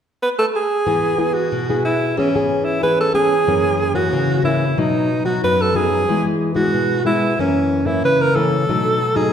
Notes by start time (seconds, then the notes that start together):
0.23 B4
0.38 A4
0.56 G#4
0.86 E3 B3 E4 G#4
1.18 B3 E4 G#4
1.34 F#4
1.52 B2
1.69 B3 E4 G#4
1.85 E4
2.17 E3 B3 C#4 G#4
2.35 B3 C#4 G#4
2.64 E4
2.82 E3 B3 C#4 G#4 B4
3.00 A4
3.13 B3 C#4 G#4
3.47 F#2 E3 A#3 C#4
3.94 E3 A#3 C#4 F#4
4.13 C#3
4.44 E3 A#3 C#4 E4
4.78 B2 F#3 B3 D#4
5.25 F#3 B3 D#4 F#4
5.44 F#2 B4
5.61 A4
5.75 F#3 B3 D#4 G#4
6.09 E3 G#3 B3 E4
6.55 G#3 B3 E4 F#4
6.74 B2
7.05 G#3 B3 E4
7.39 F#2 E3 A#3 C#4
7.85 E3 A#3 C#4 E4
8.04 C#3 B4
8.21 A#4
8.35 E3 A#3 C#4 A4
8.69 B2 F#3 A3 D#4
9.15 F#3 A3 D#4 G#4